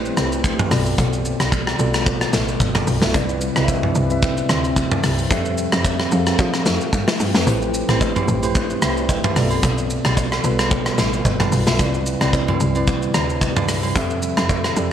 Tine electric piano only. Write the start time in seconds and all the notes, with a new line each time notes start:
Already playing: A3 E4 G4 B4 C5 D5
0.71 B2 B3 F4 A4 D5
1.79 B2 B3 F4 A4 D5
3.02 B2 B3 F4 A4 E5
3.15 C3 C4 E4 B4 D5
3.56 C3 C4 E4 B4 D#5
3.64 E5
4.11 C3 C4 E4 B4 E5
5.31 F3 C4 G4 A4 E5
6.12 F3 C4 G4 G#4 F5
6.19 A4
7.35 F3 C4 G4 A4 B4
7.47 A3 E4 G4 B4 C5
7.89 A3 E4 G4 B4 C5
8.43 A3 E4 G4 B4 C5
8.83 B4 E5
8.97 D5 G5
9.25 B4 E5
9.36 B2 A3 F4 A4 D5
9.43 B3
10.44 B2 B3 F4 A4 B4
11.67 B2 B3 F4 A4 E5
11.79 C3 C4 E4 B4 D5
12.21 C3 C4 E4 B4 D5
12.75 C3 C4 E4 B4 D5
13.96 F3 C4 G4 A4 E5
14.77 F3 C4 G4 A4 D5